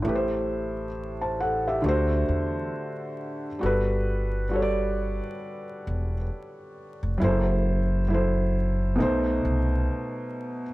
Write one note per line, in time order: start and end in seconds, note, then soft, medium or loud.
0.02 1.80 A1 loud
0.02 0.85 A2 medium
0.02 0.86 A3 medium
0.07 0.88 G4 medium
0.07 0.14 B4 medium
0.15 0.92 C5 medium
1.21 1.39 C5 soft
1.21 1.39 A5 medium
1.40 1.64 A4 medium
1.40 1.64 F#5 medium
1.68 2.09 G4 medium
1.68 2.09 E5 medium
1.82 2.25 D2 loud
1.82 3.46 D3 medium
1.82 3.47 A3 medium
1.86 3.48 F#4 medium
1.86 3.49 C5 loud
2.29 2.70 E2 medium
3.59 5.19 G1 medium
3.59 4.42 G3 medium
3.59 4.43 F#4 medium
3.63 4.44 A4 medium
3.63 4.46 B4 medium
4.49 6.14 G3 medium
4.49 6.15 F#4 medium
4.53 6.16 A4 medium
4.53 4.61 C#5 medium
4.62 6.21 D5 medium
5.87 6.29 E1 medium
7.03 7.20 F1 medium
7.18 8.96 F#1 loud
7.18 8.01 F#3 medium
7.18 8.02 E4 medium
7.22 8.03 A4 medium
7.22 8.04 C5 medium
8.08 8.99 F#3 medium
8.08 9.00 E4 medium
8.12 9.01 A4 medium
8.12 9.01 C5 medium
8.96 10.61 B2 loud
8.96 10.62 A3 medium
9.00 9.42 B1 medium
9.00 10.63 D#4 medium
9.00 10.64 C5 loud
9.45 9.86 C2 medium